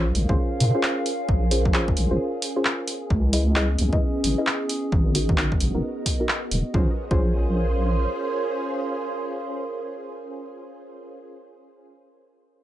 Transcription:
Already playing: wobble bass A#1, string machine C#4 F4 G#4 C5, ambient pad G#4 A#4 D#5 F5
0.15 wobble bass A#1, open hi-hat
0.29 wobble bass A#1, synth stab C#4 F4 G#4 C5, kick
0.60 wobble bass A#2, open hi-hat
0.74 synth stab C#4 F4 G#4 C5
0.83 clap
1.06 open hi-hat
1.29 wobble bass A#1, kick
1.51 synth stab C#4 F4 G#4 C5, open hi-hat
1.65 kick
1.74 synth stab C#4 F4 G#4 C5, clap
1.88 kick
1.97 wobble bass A#1, open hi-hat
2.11 wobble bass A#1, synth stab C#4 F4 G#4 C5
2.42 open hi-hat
2.56 synth stab C#4 F4 G#4 C5
2.65 clap
2.88 string machine B3 E4 D#5, ambient pad C#4, open hi-hat
3.00 ambient pad G#4
3.10 wobble bass C#2, kick
3.33 synth stab E4 G#4 B4 D#5, open hi-hat
3.56 synth stab E4 G#4 B4 D#5, clap
3.78 wobble bass C#2, open hi-hat
3.93 wobble bass C#2, synth stab E4 G#4 B4 D#5, kick
4.24 wobble bass G#1, open hi-hat
4.38 synth stab E4 G#4 B4 D#5
4.47 clap
4.69 open hi-hat
4.92 wobble bass G#1, string machine B3 F#4 A#4, kick
5.15 synth stab B3 D#4 F#4 A#4, open hi-hat
5.29 kick
5.38 synth stab B3 D#4 F#4 A#4, ambient pad D#5, clap
5.52 kick
5.60 wobble bass G#1, open hi-hat
5.75 wobble bass G#1, synth stab B3 D#4 F#4 A#4
6.06 kick, open hi-hat
6.20 synth stab B3 D#4 F#4 A#4
6.29 clap
6.51 wobble bass D#1, open hi-hat
6.74 wobble bass A#1, synth stab C#4 F4 G#4 C5, string machine C#4 F4 G#4 C5, ambient pad A#4, kick
6.82 ambient pad F5
6.90 ambient pad C6
7.11 wobble bass A#1, synth stab C#4 F4 G#4 C5, kick

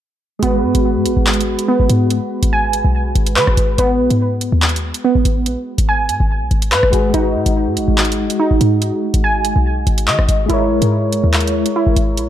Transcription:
0.39 808-style bass G#1, synth keys G#3 F#4, synth pluck B3, closed hi-hat
0.47 synth keys B4
0.64 808-style bass G#2
0.75 808-style bass G#1, closed hi-hat
0.96 808-style bass G#2
1.06 808-style bass G#1, closed hi-hat
1.17 808-style bass G#1
1.27 clap, closed hi-hat
1.34 closed hi-hat
1.41 closed hi-hat
1.59 closed hi-hat
1.68 synth pluck B3
1.80 808-style bass G#1
1.89 808-style bass G#2, closed hi-hat
2.10 closed hi-hat
2.43 808-style bass G#1, closed hi-hat
2.53 synth pluck G#5
2.73 closed hi-hat
2.85 808-style bass B1
3.15 808-style bass G#1, closed hi-hat
3.27 closed hi-hat
3.36 808-style bass D#3, synth pluck B4, clap
3.47 808-style bass G#1, cross-stick
3.57 808-style bass G#1, closed hi-hat
3.78 808-style bass G#1, synth pluck B3, closed hi-hat
3.99 808-style bass B1
4.10 808-style bass G#2, closed hi-hat
4.41 closed hi-hat
4.52 808-style bass D#2
4.62 clap, closed hi-hat
4.69 closed hi-hat
4.76 closed hi-hat
4.94 closed hi-hat
5.04 synth pluck B3
5.15 808-style bass G#1
5.25 808-style bass G#1, closed hi-hat
5.46 808-style bass A#1, closed hi-hat
5.78 808-style bass G#1, closed hi-hat
5.89 synth pluck G#5
6.09 808-style bass G#2, closed hi-hat
6.20 808-style bass G#1
6.41 808-style bass B1
6.51 808-style bass G#1, closed hi-hat
6.62 closed hi-hat
6.72 808-style bass G#2, synth pluck B4, clap
6.83 808-style bass G#1, cross-stick
6.90 808-style bass G#1, synth keys G#3 F#4 G#4, closed hi-hat
7.10 synth keys G#3 D#4
7.14 808-style bass G#1, synth pluck D#4, synth keys F#4, closed hi-hat
7.35 808-style bass G#2
7.46 808-style bass G#1, closed hi-hat
7.67 808-style bass G#2
7.77 808-style bass G#1, closed hi-hat
7.88 808-style bass G#1
7.98 clap, closed hi-hat
8.05 closed hi-hat
8.12 closed hi-hat
8.30 closed hi-hat
8.40 synth pluck D#4
8.51 808-style bass G#1
8.61 808-style bass G#2, closed hi-hat
8.82 closed hi-hat
9.14 808-style bass G#1, closed hi-hat
9.24 synth pluck G#5
9.45 closed hi-hat
9.56 808-style bass B1
9.87 808-style bass G#1, closed hi-hat
9.98 closed hi-hat
10.08 808-style bass D#3, synth pluck D#5, clap
10.19 808-style bass G#1, cross-stick
10.29 808-style bass G#1, closed hi-hat
10.46 808-style bass G#1, synth keys G#3 E4, synth pluck E4, closed hi-hat
10.51 synth keys A#4 C#5
10.71 808-style bass B1
10.82 808-style bass G#2, closed hi-hat
11.13 closed hi-hat
11.24 808-style bass D#2
11.34 clap, closed hi-hat
11.40 closed hi-hat
11.47 closed hi-hat
11.66 closed hi-hat
11.76 synth pluck E4
11.87 808-style bass G#1
11.96 808-style bass G#1, closed hi-hat
12.17 808-style bass A#1, closed hi-hat

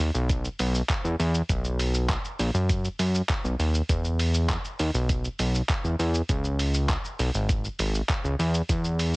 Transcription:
0.00 analog synth bass D#2
0.14 analog synth bass B1, shaker
0.29 kick, closed hi-hat, shaker
0.45 shaker
0.59 analog synth bass B1, open hi-hat, shaker
0.75 shaker
0.89 kick, clap, closed hi-hat, shaker
1.04 analog synth bass E2, shaker
1.20 analog synth bass E2, open hi-hat, shaker
1.34 shaker
1.49 analog synth bass B1, kick, closed hi-hat, shaker
1.64 shaker
1.79 open hi-hat, shaker
1.94 shaker
2.09 kick, clap, closed hi-hat, shaker
2.25 shaker
2.39 analog synth bass A#1, open hi-hat, shaker
2.54 analog synth bass F#2, shaker
2.69 kick, closed hi-hat, shaker
2.85 shaker
2.99 analog synth bass F#2, open hi-hat, shaker
3.14 shaker
3.29 kick, clap, closed hi-hat, shaker
3.44 analog synth bass B1, shaker
3.59 analog synth bass D#2, open hi-hat, shaker
3.74 shaker
3.89 analog synth bass E2, kick, closed hi-hat, shaker
4.04 shaker
4.19 open hi-hat, shaker
4.34 shaker
4.49 kick, clap, closed hi-hat, shaker
4.65 shaker
4.79 analog synth bass D#2, open hi-hat, shaker
4.94 analog synth bass B1, shaker
5.09 kick, closed hi-hat, shaker
5.24 shaker
5.39 analog synth bass B1, open hi-hat, shaker
5.54 shaker
5.69 kick, clap, closed hi-hat, shaker
5.84 analog synth bass E2, shaker
5.99 analog synth bass E2, open hi-hat, shaker
6.14 shaker
6.29 analog synth bass C#2, kick, closed hi-hat, shaker
6.44 shaker
6.59 open hi-hat, shaker
6.74 shaker
6.89 kick, clap, closed hi-hat, shaker
7.04 shaker
7.19 analog synth bass B1, open hi-hat, shaker
7.34 analog synth bass G#1, shaker
7.49 kick, closed hi-hat, shaker
7.64 shaker
7.79 analog synth bass G#1, open hi-hat, shaker
7.94 shaker
8.09 kick, clap, closed hi-hat, shaker
8.24 analog synth bass C#2, shaker
8.39 analog synth bass E2, open hi-hat, shaker
8.54 shaker
8.69 analog synth bass E2, kick, closed hi-hat, shaker
8.84 shaker
8.99 open hi-hat, shaker

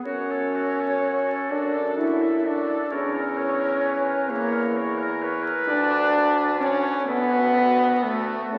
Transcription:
0.05 bassoon F#2, french horn C#4, oboe F#4, clarinet C#5, flute C#5
0.30 oboe A4
0.55 oboe F#4
0.80 oboe A4
1.03 oboe F#4
1.27 oboe A4
1.50 bassoon F#2, french horn D4, oboe F#4, clarinet A4, flute D5
1.73 oboe A4
1.97 french horn E4, oboe F#4, flute E5
2.21 oboe A4
2.45 french horn D4, oboe F#4, flute D5
2.68 oboe A4
2.90 bassoon E2, french horn C#4, clarinet A#4, oboe C#5, flute C#5
3.15 oboe A#4
3.37 clarinet A#4, oboe C#5
3.60 oboe A#4
3.83 clarinet B4, oboe C#5
4.06 oboe A#4
4.29 bassoon E2, french horn A#3, flute A#4, oboe C#5, clarinet C#5
4.52 oboe A#4
4.75 clarinet A#4, oboe C#5
4.98 oboe A#4
5.22 clarinet B4, oboe C#5
5.43 oboe A#4
5.68 bassoon D2, french horn D4, oboe D5, flute D5
5.91 oboe B4
6.13 oboe D5
6.37 oboe B4
6.60 french horn C#4, flute C#5, oboe D5
6.84 oboe B4
7.06 bassoon D2, french horn B3, clarinet F#4, oboe A4, flute B4
7.30 oboe F#4
7.54 oboe A4
7.77 oboe F#4
8.01 french horn A3, oboe A4, flute A4
8.27 oboe F#4
8.52 bassoon C#2, french horn C#4, oboe A4, clarinet A4, flute C#5

